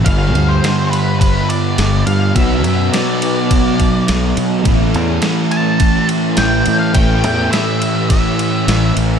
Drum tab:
RD |xxxxxxxx|xxxxxxxx|xxxxxxxx|xxxxxxxx|
SD |--o---o-|--o---o-|--o---o-|--o---o-|
BD |o---o---|o---oo--|o---o---|o---o---|